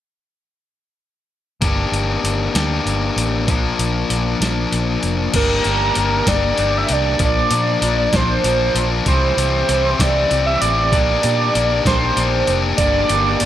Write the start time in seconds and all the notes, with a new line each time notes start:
1.61 G1 A#3 D4 G4, kick, closed hi-hat
1.92 G1, closed hi-hat
2.24 G1, closed hi-hat
2.55 D2 D4 G4, snare, closed hi-hat
2.59 A#3
2.86 G1, closed hi-hat
3.16 A1, closed hi-hat
3.48 A#1 F3 A#3 D4, kick, closed hi-hat
3.79 A#1, closed hi-hat
4.10 A#1, closed hi-hat
4.41 A#1 A#3 D4, snare, closed hi-hat
4.45 F3
4.72 A#1, closed hi-hat
5.03 F1, closed hi-hat
5.34 G1 A#3 D4 G4 A#4, kick, closed hi-hat, crash
5.64 G1 D4 G4, closed hi-hat
5.95 G1 A#3 D4 G4, closed hi-hat
6.26 G1 D4 G4 D5, kick, snare, closed hi-hat
6.56 G1 A#3 D4 G4, closed hi-hat
6.78 E5
6.87 C2 D4 G4, closed hi-hat
6.93 D5
7.19 A#1 F3 A#3 D4, kick, closed hi-hat
7.25 D5
7.51 A#2 A#3 D4, closed hi-hat
7.82 A#1 F3 A#3 D4, closed hi-hat
8.13 A#1 A#3 D4 C5, kick, snare, closed hi-hat
8.44 A#1 F3 A#3 D4, closed hi-hat
8.75 A#1 A#3 D4, closed hi-hat
9.06 C2 E3 C4 E4 G4 C5, kick, closed hi-hat
9.37 C2 C4 E4 G4, closed hi-hat
9.68 C2 E3 C4 E4 G4, closed hi-hat
9.98 C2 C4 E4 G4 D5, kick, snare, closed hi-hat
10.29 C2 E3 C4 E4 G4, closed hi-hat
10.46 E5
10.60 A1 C4 E4 G4 D5, closed hi-hat
10.92 A#1 A#3 D4 G4 D5, kick, closed hi-hat
11.23 A#2 D4 G4, closed hi-hat
11.54 A#1 A#3 D4 G4, closed hi-hat
11.85 A#1 D4 G4 C5, kick, snare, closed hi-hat
12.17 A#1 A#3 D4 G4, closed hi-hat
12.47 F1 D4 G4, closed hi-hat
12.77 G1 D3 G3 A#3 D4 D5, kick, closed hi-hat
12.82 G4
13.09 G1 D3 G3 A#3 D4 G4, closed hi-hat
13.40 G1 D3 G3 A#3 D4, closed hi-hat